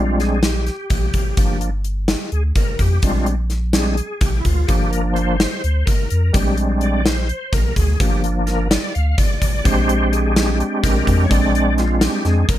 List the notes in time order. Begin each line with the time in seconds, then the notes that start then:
Already playing: A#1 G3 G#3 C4 D4 F4
0.20 G#4, snare, closed hi-hat
0.43 G4, snare, closed hi-hat
0.67 snare, closed hi-hat
0.90 A#1, kick, closed hi-hat
1.14 G#1, kick, closed hi-hat
1.37 G1 F3 A#3 D4, kick, closed hi-hat
1.61 closed hi-hat
1.84 closed hi-hat
2.08 snare, closed hi-hat
2.32 D2 G#4, closed hi-hat
2.55 G1 A#4, kick, closed hi-hat
2.79 F2 G4, kick, closed hi-hat
3.02 A#1 G3 G#3 C4 D4 F4, kick, closed hi-hat
3.26 closed hi-hat
3.50 snare, closed hi-hat
3.73 G3 G#3 C4 D4 G#4, snare, closed hi-hat
3.97 closed hi-hat
4.21 A#1 G4, kick, closed hi-hat
4.40 E4
4.45 D2 F4, kick, closed hi-hat
4.67 G1 F3 A#3 D4 G4, kick, closed hi-hat
4.91 A#4, closed hi-hat
5.14 C5, closed hi-hat
5.40 snare, closed hi-hat
5.64 D2, closed hi-hat
5.86 G1 A#4, kick, closed hi-hat
6.10 F2, closed hi-hat
6.33 A#1 G3 G#3 C4 D4 G4, kick, closed hi-hat
6.57 closed hi-hat
6.81 D5, closed hi-hat
7.05 C5, snare, closed hi-hat
7.29 closed hi-hat
7.53 A#1 A#4, kick, closed hi-hat
7.76 D2 G#4, kick, closed hi-hat
8.00 G1 F3 A#3 D4 G4, kick, closed hi-hat
8.24 closed hi-hat
8.47 A#4, snare, closed hi-hat
8.71 D5, snare, closed hi-hat
8.94 D2 F5, closed hi-hat
9.18 G1 D5, kick, closed hi-hat
9.42 G#1, kick, closed hi-hat
9.64 A#1 G#3 C4 D4 G4 C5, kick, closed hi-hat
9.89 closed hi-hat
10.13 G#4, closed hi-hat
10.36 snare, closed hi-hat
10.60 closed hi-hat
10.83 A#1 A#4, kick, snare, closed hi-hat
11.07 F2, kick, closed hi-hat
11.24 C#5
11.29 A#1 G#3 C4 D4 D5, kick, closed hi-hat
11.55 closed hi-hat
11.78 F4, snare, closed hi-hat
12.01 G4, snare, closed hi-hat
12.25 F2 G#3 C4 D4 G#4, snare, closed hi-hat
12.49 A#1 A#4, kick, closed hi-hat